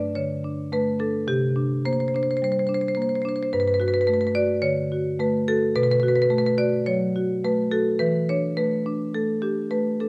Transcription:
0.00 0.11 G2 soft
0.00 0.33 D4 soft
0.00 0.15 D5 medium
0.15 0.60 D3 soft
0.15 0.69 C#5 medium
0.44 0.89 D4 soft
0.72 1.17 A3 soft
0.72 0.99 B4 medium
0.99 1.28 D4 soft
0.99 1.27 A4 medium
1.28 2.40 C3 soft
1.28 1.84 G4 medium
1.56 2.03 D4 soft
1.85 2.31 A#3 soft
1.85 1.93 C5 medium
1.93 2.00 C5 soft
2.00 2.08 C5 medium
2.08 2.16 C5 medium
2.14 2.59 D4 soft
2.14 2.23 C5 medium
2.23 2.31 C5 medium
2.31 2.37 C5 medium
2.37 2.44 C5 medium
2.42 2.87 G3 soft
2.42 2.52 C5 medium
2.52 2.59 C5 medium
2.59 2.67 C5 medium
2.67 3.14 D4 soft
2.67 2.74 C5 soft
2.74 2.81 C5 medium
2.81 2.88 C5 medium
2.88 2.95 C5 medium
2.95 3.42 A#3 soft
2.95 3.02 C5 medium
3.02 3.09 C5 medium
3.09 3.15 C5 soft
3.15 3.22 C5 medium
3.22 3.53 D4 soft
3.22 3.29 C5 soft
3.29 3.36 C5 medium
3.36 3.43 C5 soft
3.43 3.49 C5 medium
3.53 4.60 G2 soft
3.53 3.60 B4 medium
3.60 3.68 B4 medium
3.68 3.74 B4 medium
3.74 3.81 B4 medium
3.80 4.24 F#4 soft
3.80 3.88 B4 medium
3.88 3.94 B4 medium
3.94 4.01 B4 medium
4.01 4.07 B4 medium
4.07 4.52 A3 soft
4.07 4.14 B4 medium
4.14 4.21 B4 medium
4.21 4.27 B4 medium
4.27 4.32 B4 medium
4.35 4.80 F#4 soft
4.35 4.62 D5 medium
4.62 5.07 D3 soft
4.62 5.16 C#5 medium
4.92 5.36 F#4 soft
5.20 5.64 A3 soft
5.20 5.46 B4 medium
5.48 5.75 F#4 soft
5.48 5.74 A4 medium
5.76 6.84 B2 medium
5.76 5.83 B4 medium
5.83 5.91 B4 medium
5.91 6.00 B4 medium
6.00 6.47 F#4 soft
6.00 6.08 B4 medium
6.08 6.16 B4 medium
6.16 6.22 B4 medium
6.22 6.30 B4 medium
6.30 6.76 A3 soft
6.30 6.38 B4 medium
6.38 6.46 B4 medium
6.46 6.56 B4 medium
6.58 7.04 F#4 soft
6.58 6.86 D5 medium
6.86 7.33 F#3 soft
6.86 7.41 C#5 medium
7.16 7.61 F#4 soft
7.44 7.89 A3 soft
7.44 7.71 B4 medium
7.71 8.00 F#4 soft
7.71 7.99 A4 medium
7.99 9.10 E3 medium
7.99 8.27 B4 medium
8.29 8.74 D4 soft
8.29 8.56 C#5 medium
8.57 9.02 A3 soft
8.57 9.12 B4 medium
8.86 9.32 D4 soft
9.14 9.61 A3 soft
9.14 9.42 A4 medium
9.42 9.90 D4 soft
9.42 9.71 G4 medium
9.71 10.09 A3 soft
9.71 10.00 B4 medium
10.00 10.09 D4 soft
10.00 10.09 A4 medium

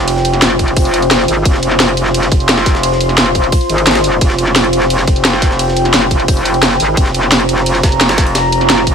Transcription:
0.00 0.41 F1 medium
0.00 8.95 F4 medium
0.00 8.95 C5 medium
0.00 1.44 G5 medium
0.08 closed hi-hat medium
0.08 ride loud
0.08 ride medium
0.16 snare soft
0.25 closed hi-hat medium
0.25 ride medium
0.33 snare soft
0.33 closed hi-hat soft
0.42 0.75 F1 medium
0.42 snare loud
0.42 closed hi-hat loud
0.42 ride medium
0.51 snare soft
0.59 kick medium
0.59 closed hi-hat medium
0.59 ride soft
0.59 ride medium
0.68 closed hi-hat soft
0.77 1.10 F1 loud
0.77 kick loud
0.77 closed hi-hat medium
0.77 open hi-hat medium
0.77 ride medium
0.85 closed hi-hat soft
0.94 closed hi-hat medium
0.94 ride medium
1.02 closed hi-hat soft
1.02 ride soft
1.11 1.27 F1 loud
1.11 snare loud
1.11 closed hi-hat loud
1.11 ride medium
1.20 snare soft
1.28 1.44 G#1 loud
1.28 open hi-hat medium
1.28 ride medium
1.45 1.79 F1 medium
1.45 4.20 C6 medium
1.45 kick loud
1.45 closed hi-hat loud
1.45 ride medium
1.54 snare soft
1.63 closed hi-hat medium
1.63 ride medium
1.71 snare soft
1.80 2.30 F1 medium
1.80 snare loud
1.80 closed hi-hat medium
1.80 ride medium
1.89 snare soft
1.89 ride soft
1.97 closed hi-hat medium
1.97 ride medium
2.06 snare soft
2.14 closed hi-hat medium
2.14 ride medium
2.23 snare soft
2.23 closed hi-hat soft
2.32 3.17 F1 loud
2.32 kick loud
2.32 closed hi-hat medium
2.32 ride soft
2.32 ride medium
2.40 closed hi-hat soft
2.49 snare loud
2.49 closed hi-hat medium
2.49 ride loud
2.49 ride medium
2.58 snare medium
2.66 kick loud
2.66 snare medium
2.66 open hi-hat medium
2.66 ride soft
2.66 ride medium
2.75 snare medium
2.83 closed hi-hat medium
2.83 ride medium
2.92 snare soft
3.01 closed hi-hat medium
3.01 ride medium
3.09 snare soft
3.09 closed hi-hat soft
3.18 3.51 F1 loud
3.18 snare loud
3.18 closed hi-hat medium
3.18 ride medium
3.26 snare soft
3.35 kick medium
3.35 closed hi-hat medium
3.35 ride medium
3.44 closed hi-hat soft
3.52 kick loud
3.52 closed hi-hat medium
3.52 open hi-hat medium
3.52 ride medium
3.61 closed hi-hat soft
3.70 4.20 G#1 loud
3.70 closed hi-hat medium
3.70 ride medium
3.78 closed hi-hat soft
3.78 ride soft
3.87 snare loud
3.87 closed hi-hat medium
3.87 ride medium
3.91 snare loud
3.91 ride medium
3.95 snare loud
3.95 ride medium
4.04 open hi-hat medium
4.04 ride medium
4.21 4.54 F1 loud
4.21 6.96 G5 medium
4.21 kick loud
4.21 closed hi-hat medium
4.21 ride medium
4.30 snare medium
4.38 closed hi-hat medium
4.38 ride medium
4.47 snare soft
4.56 5.06 F1 loud
4.56 snare loud
4.56 closed hi-hat medium
4.56 ride medium
4.64 snare soft
4.64 ride soft
4.73 closed hi-hat medium
4.73 ride medium
4.82 snare soft
4.90 closed hi-hat medium
4.90 ride medium
4.90 ride loud
4.99 snare soft
4.99 closed hi-hat soft
5.07 5.92 F1 loud
5.07 kick loud
5.07 closed hi-hat medium
5.07 ride medium
5.16 closed hi-hat soft
5.25 snare loud
5.25 closed hi-hat medium
5.25 ride medium
5.33 snare soft
5.33 snare medium
5.42 kick loud
5.42 snare medium
5.42 open hi-hat medium
5.42 ride medium
5.51 snare medium
5.59 closed hi-hat medium
5.59 ride medium
5.68 snare soft
5.76 closed hi-hat medium
5.76 ride medium
5.85 snare soft
5.85 closed hi-hat soft
5.94 6.27 F1 medium
5.94 snare loud
5.94 closed hi-hat medium
5.94 ride medium
6.02 snare soft
6.11 kick medium
6.11 closed hi-hat medium
6.11 ride medium
6.20 closed hi-hat soft
6.28 6.61 F1 loud
6.28 kick loud
6.28 closed hi-hat medium
6.28 open hi-hat medium
6.28 ride medium
6.37 closed hi-hat soft
6.45 closed hi-hat medium
6.45 ride medium
6.54 closed hi-hat soft
6.54 ride soft
6.63 6.79 F1 loud
6.63 snare loud
6.63 closed hi-hat medium
6.63 ride medium
6.63 ride loud
6.71 snare soft
6.80 6.96 G#1 loud
6.80 open hi-hat medium
6.80 ride medium
6.97 7.30 F1 loud
6.97 8.95 A#5 medium
6.97 kick loud
6.97 closed hi-hat loud
6.97 ride medium
7.06 snare soft
7.14 closed hi-hat medium
7.14 ride medium
7.23 snare soft
7.32 7.82 F1 loud
7.32 snare loud
7.32 closed hi-hat medium
7.32 ride medium
7.40 snare soft
7.40 ride soft
7.49 closed hi-hat medium
7.49 ride medium
7.58 snare soft
7.66 closed hi-hat medium
7.66 ride medium
7.75 snare soft
7.75 closed hi-hat soft
7.83 8.68 F1 loud
7.83 kick loud
7.83 snare loud
7.83 closed hi-hat medium
7.83 ride medium
7.92 closed hi-hat soft
8.01 snare loud
8.01 closed hi-hat loud
8.01 ride medium
8.09 snare loud
8.09 snare medium
8.09 ride medium
8.18 kick loud
8.18 snare loud
8.18 open hi-hat medium
8.18 ride medium
8.27 ride medium
8.35 snare loud
8.35 closed hi-hat loud
8.35 ride medium
8.52 closed hi-hat medium
8.52 ride medium
8.61 snare soft
8.61 closed hi-hat soft
8.70 8.95 F1 loud
8.70 snare loud
8.70 closed hi-hat loud
8.70 ride medium
8.78 snare soft
8.87 kick medium
8.87 closed hi-hat medium
8.87 ride medium

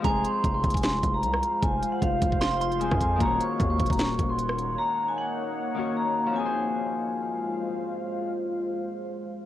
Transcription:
0.00 2.77 F3 medium
0.00 2.79 G#3 medium
0.04 0.24 F1 loud
0.04 3.17 G#3 medium
0.04 2.81 C4 medium
0.04 3.17 F4 medium
0.04 2.78 G#4 medium
0.04 3.17 C5 medium
0.04 3.17 F5 medium
0.04 0.22 G#5 loud
0.04 0.42 A#5 loud
0.04 kick loud
0.04 closed hi-hat medium
0.09 2.79 C5 medium
0.25 0.53 C6 medium
0.25 closed hi-hat medium
0.44 0.63 F1 loud
0.44 kick loud
0.44 closed hi-hat medium
0.54 0.72 C6 medium
0.64 1.02 F1 loud
0.64 kick medium
0.64 closed hi-hat medium
0.70 kick loud
0.70 closed hi-hat medium
0.74 0.83 G#5 medium
0.74 closed hi-hat medium
0.83 1.12 C6 medium
0.83 cross-stick medium
0.83 snare loud
0.83 closed hi-hat medium
1.03 1.24 F1 loud
1.03 kick medium
1.03 closed hi-hat medium
1.14 1.60 A#5 medium
1.23 1.42 C2 loud
1.23 closed hi-hat medium
1.33 cross-stick loud
1.43 closed hi-hat medium
1.62 1.81 F1 loud
1.62 1.91 G#5 medium
1.62 kick loud
1.62 closed hi-hat medium
1.83 closed hi-hat medium
1.92 2.01 F#5 medium
2.02 2.21 F1 loud
2.02 2.77 F5 medium
2.02 kick loud
2.02 closed hi-hat medium
2.22 2.89 F1 loud
2.22 kick medium
2.22 closed hi-hat medium
2.32 kick loud
2.41 2.60 C6 loud
2.41 cross-stick medium
2.41 snare loud
2.41 closed hi-hat medium
2.61 3.17 C6 medium
2.61 closed hi-hat medium
2.72 closed hi-hat soft
2.79 3.25 F3 medium
2.79 3.25 G#3 soft
2.79 3.20 C4 soft
2.79 3.21 G#4 medium
2.79 2.99 G#5 medium
2.79 closed hi-hat medium
2.83 3.22 C5 medium
2.91 3.19 F2 loud
2.91 kick loud
2.91 cross-stick medium
3.01 3.18 G#5 medium
3.01 kick medium
3.01 closed hi-hat medium
3.16 5.73 D#3 medium
3.16 5.75 A#3 medium
3.20 3.39 D#1 loud
3.20 6.33 A#3 medium
3.20 5.77 C#4 medium
3.20 6.33 D#4 medium
3.20 5.74 F#4 medium
3.20 6.33 C#5 medium
3.20 6.33 F#5 medium
3.20 3.38 A#5 loud
3.20 kick loud
3.20 closed hi-hat medium
3.25 5.75 C#5 medium
3.41 3.69 C#6 medium
3.41 closed hi-hat medium
3.60 3.79 D#2 loud
3.60 kick loud
3.60 closed hi-hat medium
3.70 3.88 C#6 medium
3.80 3.89 D#1 loud
3.80 kick medium
3.80 closed hi-hat medium
3.86 4.18 D#1 loud
3.86 kick loud
3.86 closed hi-hat medium
3.90 3.99 A#5 medium
3.90 closed hi-hat medium
3.99 4.28 C#6 medium
3.99 cross-stick medium
3.99 snare loud
3.99 closed hi-hat medium
4.19 4.76 D#1 loud
4.19 kick medium
4.19 closed hi-hat medium
4.29 4.75 C6 medium
4.39 closed hi-hat medium
4.49 cross-stick loud
4.59 closed hi-hat medium
4.78 5.07 A#5 loud
5.08 5.17 G#5 medium
5.18 5.93 F#5 medium
5.75 6.41 D#3 medium
5.75 8.97 A#3 medium
5.75 6.39 C#4 medium
5.75 8.22 F#4 medium
5.79 6.39 C#5 medium
5.97 6.34 A#5 medium
6.27 9.46 F3 medium
6.33 9.46 G#3 medium
6.33 9.46 C4 medium
6.33 9.46 F4 medium
6.33 9.46 C5 medium
6.33 9.46 F5 medium
6.33 7.51 G#5 medium
6.39 9.46 G#4 medium
6.46 9.46 C5 loud

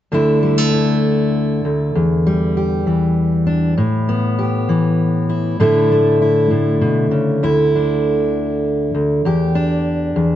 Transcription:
0.12 1.64 D2 medium
0.12 2.86 D3 soft
0.12 0.42 A3 soft
0.12 1.92 D4 soft
0.12 0.73 E4 soft
0.43 0.58 G3 soft
0.58 1.95 A3 soft
0.73 2.56 E4 soft
1.65 1.95 D2 medium
1.95 3.74 E2 medium
2.27 3.78 G3 soft
2.57 3.74 G4 soft
2.86 4.68 E3 soft
3.47 3.73 D4 soft
3.78 5.58 A2 medium
4.09 5.57 B3 medium
4.39 5.29 G4 soft
4.69 5.60 E3 soft
5.29 5.62 E4 soft
5.60 6.49 A2 medium
5.60 9.26 D3 medium
5.60 5.91 A3 medium
5.60 7.40 D4 medium
5.60 6.20 E4 medium
5.92 7.40 A3 soft
6.22 7.42 E4 soft
6.51 6.81 A2 soft
6.81 7.11 B2 medium
7.11 7.42 C#3 medium
7.43 8.93 D2 medium
7.43 9.26 E4 medium
7.75 9.23 D4 soft
8.94 9.25 D2 medium
9.25 10.15 E2 medium
9.25 10.36 G4 medium
9.55 10.36 D4 medium
10.16 10.36 E2 medium

